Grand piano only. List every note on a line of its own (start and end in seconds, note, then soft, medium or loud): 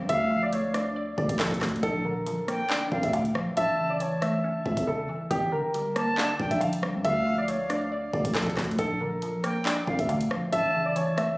0.09 0.40 E5 loud
0.43 0.52 D5 medium
0.53 0.73 C#5 medium
0.74 1.15 D5 medium
1.18 1.38 D5 medium
1.40 1.60 A4 medium
1.83 2.03 A4 loud
2.05 2.66 A#4 medium
2.70 3.01 D5 medium
3.04 3.13 E5 medium
3.13 3.34 F5 medium
3.57 3.88 E5 loud
3.90 4.00 D5 medium
4.00 4.21 C#5 medium
4.22 4.63 E5 medium
4.66 4.86 E5 medium
4.87 5.08 A4 medium
5.31 5.51 G4 loud
5.52 6.14 A#4 medium
6.18 6.49 D5 medium
6.51 6.61 E5 medium
6.61 6.81 F5 medium
7.05 7.36 E5 loud
7.38 7.48 D5 medium
7.48 7.69 C#5 medium
7.70 8.11 D5 medium
8.13 8.34 D5 medium
8.35 8.56 A4 medium
8.79 8.99 A4 loud
9.01 9.62 A#4 medium
9.65 9.97 D5 medium
9.99 10.09 E5 medium
10.09 10.29 F5 medium
10.52 10.84 E5 loud
10.86 10.95 D5 medium
10.96 11.16 C#5 medium
11.17 11.38 E5 medium